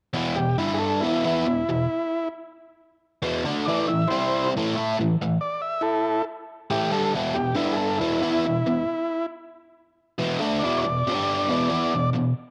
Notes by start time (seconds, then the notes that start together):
0.13 E2 B2 E3
0.36 E2 B2 G4
0.58 G2 D3 G3 E4
0.74 G#4
0.79 A4
1.01 E2 B2 E3 E4
1.25 E3 B3 E4
1.46 E2 B2
1.69 E2 B2
3.23 E2 B2 E3
3.45 D3 A3 D4
3.66 A2 E3 A3 D5
3.88 A2 E3 E5
4.07 C3 E4 C5
4.11 G3 C4
4.57 A2 E3 A3
4.76 A3 E4 A4
4.99 A2 E3
5.22 A2 E3
5.41 D5
5.62 E5
5.81 E4 A4
6.70 A2 E3 A3 G4
6.91 G2 D3 G3 A4
7.15 E2 B2 E3
7.34 E2 B2 G4
7.55 G2 D3 G3 E4
7.73 G#4 A4
7.98 E2 B2 E3 E4
8.22 E3 B3 E4
8.45 E2 B2
8.66 E2 B2
10.18 E2 B2 E3
10.39 D3 A3 D4
10.59 D5
10.64 E2 B2 E3
10.78 C#5
10.82 E2 B2 D5
11.07 G2 D3 G3
11.48 E2 B2 E3
11.70 E3 B3 E4
11.94 E2 B2
12.14 E2 B2